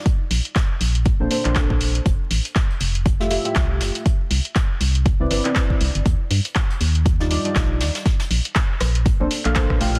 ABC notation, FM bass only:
X:1
M:4/4
L:1/16
Q:"Swing 16ths" 1/4=120
K:Bblyd
V:1 name="FM bass" clef=bass
z2 B,,, z3 B,,,2 z B,,, z B,,,4 z | F,,, z A,,, z3 F,,,4 z2 C,,2 F,,, z | z2 C,, z3 C,,2 z C,, G,,, z3 C,, G,,, | _E,, z G,, z3 E,,4 z2 B,,,2 E,, z |
z2 B,,, z3 B,,,2 z B,,, z B,,,4 z |]